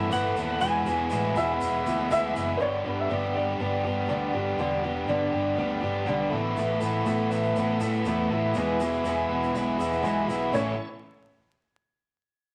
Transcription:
Already playing: steel-string acoustic guitar B3 E4 A4, overdriven electric guitar B3 E4, tonewheel organ B3 E4 A4 B4, clean electric guitar E5
0.10 fingered electric bass G1, overdriven electric guitar E3 A3 B3 E4, steel-string acoustic guitar A4, clean electric guitar F#5, shaker
0.36 fingered electric bass D#2, overdriven electric guitar A3 B3 E4, shaker
0.60 fingered electric bass E1, overdriven electric guitar E2 B2 E3 G#3 B3 E4, tonewheel organ B3 E4 G#4 B4, steel-string acoustic guitar G#4, clean electric guitar G#5, shaker
0.86 fingered electric bass E1, overdriven electric guitar E3 G#3 B3 E4, steel-string acoustic guitar G#4, shaker
1.10 fingered electric bass A1, overdriven electric guitar E2 B2 E3 G#3 B3 E4, steel-string acoustic guitar G#4, shaker
1.35 fingered electric bass E1, overdriven electric guitar E3 G#3 B3 E4, steel-string acoustic guitar G#4, upright piano E5, shaker
1.58 fingered electric bass E1, clean electric guitar F#5, shaker
1.85 fingered electric bass D2, steel-string acoustic guitar B3 E4 G#4, shaker
2.11 fingered electric bass D2, overdriven electric guitar E3 G#3 B3 E4, steel-string acoustic guitar G#4, upright piano E5, shaker
2.35 fingered electric bass F#1, overdriven electric guitar E3 G#3 B3 E4, shaker
2.57 fingered electric bass G1, overdriven electric guitar G2 D3 G3, upright piano C5
2.62 overdriven electric guitar B3 D4 G4, tonewheel organ B3 D4 G4 B4, upright piano C#5
2.85 fingered electric bass G1, overdriven electric guitar G3 B3 D4 G4, upright piano B4
3.00 upright piano E5
3.09 fingered electric bass G1, steel-string acoustic guitar G2 D3, overdriven electric guitar G3 B3 D4 G4
3.35 overdriven electric guitar G2 D3 G3 B3 D4 G4, upright piano D5
3.59 fingered electric bass G1, overdriven electric guitar G3 B3 D4 G4
3.85 fingered electric bass G2, overdriven electric guitar G3 B3 D4 G4
4.08 fingered electric bass D2, overdriven electric guitar G2 D3 G3 B3 D4 G4
4.33 fingered electric bass G1, overdriven electric guitar G3 B3 D4 G4
4.58 fingered electric bass E1, overdriven electric guitar G2 D3 G3 B3 D4 G4
4.84 overdriven electric guitar G3 B3 D4 G4
5.07 fingered electric bass G1, steel-string acoustic guitar G2 D3, overdriven electric guitar G3 B3 D4 G4
5.32 fingered electric bass G1, overdriven electric guitar G2 D3 G3 B3 D4 G4
5.57 fingered electric bass D2, overdriven electric guitar G3 B3 D4 G4
5.81 fingered electric bass G1, overdriven electric guitar G3 B3 D4 G4
6.05 fingered electric bass B1, overdriven electric guitar G2 D3 G3 B3 D4 G4
6.30 fingered electric bass A1, overdriven electric guitar A2 E3 A3 B3 E4, tonewheel organ B3 E4 A4 B4, steel-string acoustic guitar A4
6.55 fingered electric bass A1, overdriven electric guitar A2 E3 A3 B3 E4, steel-string acoustic guitar A4, shaker
6.80 fingered electric bass A1, overdriven electric guitar A3 B3 E4, steel-string acoustic guitar A4, shaker
7.06 fingered electric bass A1, overdriven electric guitar E3 A3 B3 E4, steel-string acoustic guitar A4, shaker
7.31 overdriven electric guitar A2 E3 A3 B3 E4, shaker
7.44 shaker
7.56 fingered electric bass A1, overdriven electric guitar E3 A3 B3 E4, steel-string acoustic guitar A4, shaker
7.79 fingered electric bass A2, overdriven electric guitar A3 B3 E4, steel-string acoustic guitar A4, shaker
7.92 shaker
8.05 fingered electric bass E2, overdriven electric guitar A2 E3 A3 B3 E4, steel-string acoustic guitar A4, shaker
8.30 fingered electric bass A1, overdriven electric guitar A3 B3 E4, steel-string acoustic guitar A4
8.54 fingered electric bass E1, overdriven electric guitar E2 B2 E3 G#3 B3 E4, tonewheel organ B3 E4 G#4 B4, shaker
8.58 steel-string acoustic guitar G#4
8.80 overdriven electric guitar E3 G#3 B3 E4, steel-string acoustic guitar G#4, shaker
8.93 shaker
9.04 fingered electric bass E1, overdriven electric guitar E3 G#3 B3 E4, steel-string acoustic guitar G#4, shaker
9.29 fingered electric bass E1, overdriven electric guitar E2 B2 E3 G#3 B3 E4
9.43 shaker
9.54 fingered electric bass B1, overdriven electric guitar E3 G#3 B3 E4, shaker
9.58 steel-string acoustic guitar G#4
9.78 fingered electric bass E1, overdriven electric guitar E3 G#3 B3 E4, steel-string acoustic guitar G#4, shaker
9.92 shaker
10.02 fingered electric bass B1, overdriven electric guitar E2 B2, steel-string acoustic guitar E3 G#4, shaker
10.06 overdriven electric guitar E3 G#3 B3 E4
10.26 fingered electric bass B1, overdriven electric guitar E4, steel-string acoustic guitar G#4, shaker
10.31 overdriven electric guitar E3 G#3 B3
10.54 fingered electric bass A1, overdriven electric guitar A2 E3 A3 C#4 E4, tonewheel organ C#4 E4 A4 C#5, steel-string acoustic guitar A4, upright piano C#5, shaker

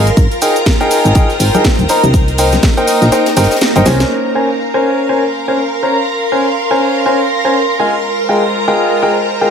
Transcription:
Already playing: fm bass G#1, string section F4 A#4 F5 C6, string machine A#4 A#5
0.07 closed hi-hat, tambourine, cabasa
0.17 fm bass G#1, kick, closed hi-hat, tambourine, cabasa
0.32 closed hi-hat, cabasa
0.36 string section C5
0.42 grand piano D#4 G#4 A#4 G5, closed hi-hat, open hi-hat, tambourine, cabasa
0.56 closed hi-hat, tambourine, cabasa
0.66 string section G5, kick, snare, closed hi-hat, tambourine, cabasa
0.81 grand piano D#4 G#4 A#4 G5, closed hi-hat, tambourine, cabasa
0.91 closed hi-hat, open hi-hat, tambourine, cabasa
1.05 fm bass G#1, closed hi-hat, tambourine, cabasa
1.15 grand piano D#4 G#4 A#4 G5, kick, closed hi-hat, tambourine, cabasa
1.29 snare, closed hi-hat, tambourine, cabasa
1.40 fm bass G#1, closed hi-hat, open hi-hat, tambourine, cabasa
1.54 grand piano D#4 G#4 A#4 G5, closed hi-hat, tambourine, high conga, cabasa
1.64 kick, snare, closed hi-hat, cabasa
1.79 fm bass D#1, closed hi-hat, high conga, cabasa
1.89 string section A#3, grand piano D#4 A#4 C5 A#5, closed hi-hat, open hi-hat, tambourine, cabasa
2.03 fm bass C2, closed hi-hat, tambourine, high conga, cabasa
2.09 string section D#4
2.14 kick, closed hi-hat, tambourine, cabasa
2.28 closed hi-hat, tambourine, cabasa
2.38 grand piano D#4 A#4 C5 G5, closed hi-hat, open hi-hat, tambourine, cabasa
2.52 snare, closed hi-hat, tambourine, high conga, cabasa
2.63 kick, snare, closed hi-hat, tambourine, cabasa
2.77 grand piano D#4 A#4 C5 G5, closed hi-hat, tambourine, cabasa
2.88 closed hi-hat, open hi-hat, tambourine, cabasa
3.02 fm bass A#1, snare, closed hi-hat, tambourine, cabasa
3.12 grand piano D#4 A#4 C5 G5, snare, closed hi-hat, tambourine, cabasa
3.26 snare, closed hi-hat, tambourine, cabasa
3.37 fm bass G1, grand piano D#4 A#4 C5 G5, snare, closed hi-hat, open hi-hat, tambourine, cabasa
3.44 snare, closed hi-hat
3.51 snare, closed hi-hat, tambourine, cabasa
3.56 snare, closed hi-hat
3.61 snare, closed hi-hat, tambourine, cabasa
3.76 fm bass G1, grand piano D#4 A#4 C5 G5, closed hi-hat, tambourine, high conga, cabasa
3.86 fm bass C2, grand piano C#4 A#4 C5 G#5, snare, closed hi-hat, open hi-hat, tambourine, high conga, cabasa
4.00 snare, closed hi-hat, tambourine, cabasa
4.11 string machine A#4 A#5, string section A#4
4.35 grand piano C#4 A#4 C5 G#5
4.43 string section F5
4.74 grand piano C#4 A#4 C5 G#5
5.09 grand piano C#4 A#4 C5 G#5
5.19 string section C6
5.48 grand piano C#4 A#4 C5 G#5
5.83 grand piano C#4 A#4 C5 A#5
6.32 grand piano C#4 A#4 C5 G#5
6.71 grand piano C#4 A#4 C5 G#5
7.06 grand piano C#4 A#4 C5 G#5
7.45 grand piano C#4 A#4 C5 G#5
7.79 string section G#3, grand piano G#3 F4 G#4 A#4 D#5 G#5
7.85 string section F4
8.24 string section C5
8.29 grand piano G#3 F4 G#4 A#4 D#5 G5
8.68 grand piano G#3 F4 G#4 A#4 D#5 G5, string section A#5
9.02 grand piano G#3 F4 G#4 A#4 D#5 G5
9.41 grand piano G#3 F4 G#4 A#4 D#5 G5

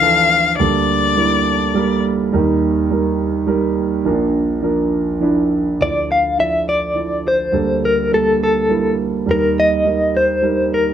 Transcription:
Already playing: grand piano D2 D3 E3 E4 D5, viola F5
0.00 grand piano E3 F3 A4
0.58 grand piano D2 D3 G3 A#3 A4, viola D5
1.16 grand piano G3 A#3 E4
1.74 grand piano G3 A#3 A#4
2.32 grand piano D#2 D#3 G3 D#4 A#4
2.90 grand piano G3 D#4 A#4
3.47 grand piano G3 D#4 A#4
4.05 grand piano A#1 A#2 F3 D4 A#4
4.62 grand piano F3 D4 A#4
5.21 grand piano F3 D4 E4
5.80 grand piano D2 D3 F3 E4 D5, clean electric guitar D5
6.12 clean electric guitar F5
6.38 grand piano F3 E4 D5, clean electric guitar E5
6.69 clean electric guitar D5
6.95 grand piano F3 E4 D5
7.28 clean electric guitar C5
7.52 grand piano D2 D3 G3 A#3 A4
7.85 clean electric guitar A#4
8.11 grand piano G3 A#3 A4, clean electric guitar A4
8.44 clean electric guitar A4
8.69 grand piano G3 A#3 E4
9.26 grand piano D#2 D#3 G3 D#4 A#4
9.31 clean electric guitar A#4
9.60 clean electric guitar D#5
9.85 grand piano G3 D#4 A#4
10.17 clean electric guitar C5
10.42 grand piano G3 D#4 A#4
10.74 clean electric guitar A#4

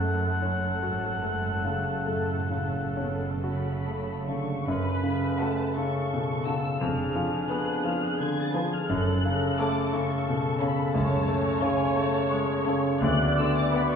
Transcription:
Already playing: double bass section F#1, cello section F#2, grand piano F#2, viola section A3 A4, oboe F#5
0.01 grand piano A3
0.42 grand piano C#4
0.83 cello section G#2, grand piano F#4
1.22 grand piano A3
1.64 cello section F#2, grand piano C#3
2.06 cello section A2, grand piano A3
2.50 grand piano C#3
2.97 cello section B2, grand piano C#4
3.43 cello section C#3, grand piano F#4, violin section B5
3.87 grand piano A3
4.27 grand piano C#3, cello section D3, violin section C#6
4.65 double bass section F#1, cello section F#2, grand piano F#2, french horn section C#4 A4, viola section B4, violin section B5
5.03 grand piano C#3
5.40 grand piano A3, violin section F#4 A4 A5
5.77 grand piano C#3, viola section A4, violin section C#6
6.13 grand piano B2
6.46 grand piano C#3, violin section F#4 A4 E6
6.81 double bass section F1, grand piano F2, cello section F2, french horn section D4 G#4, viola section G#4, violin section F6
7.15 grand piano F3
7.50 grand piano B3, violin section G#4 B4 F#6
7.85 grand piano F3, violin section F6
8.04 violin section F#6
8.20 grand piano D3, violin section G#6
8.40 violin section A6
8.54 grand piano F3, violin section G#4 B4 G#6
8.74 violin section F6
8.88 double bass section F#1, grand piano F#2, cello section F#2, french horn section C#4 A4, viola section A4, violin section F#6
9.25 grand piano C#3
9.60 grand piano A3, violin section A4 C#5 D6
9.93 grand piano C#3, violin section C#6
10.29 grand piano B2
10.60 grand piano C#3, violin section A4 C#5 B5
10.93 double bass section C#2, cello section C#2, grand piano F#2, viola section C#5, violin section A5
11.28 grand piano A3
11.62 grand piano C#3, violin section A4 C#5 G#5
11.96 grand piano A3, violin section A5
12.31 grand piano G#3
12.66 grand piano C#3, violin section A4 C#5
13.01 grand piano D2, double bass section D2, cello section D2, french horn section B3 F#4, viola section D5, violin section F#6
13.38 grand piano D3, violin section E6
13.57 violin section D6
13.74 grand piano B3, violin section B4 F#5 B5
13.92 violin section C#6

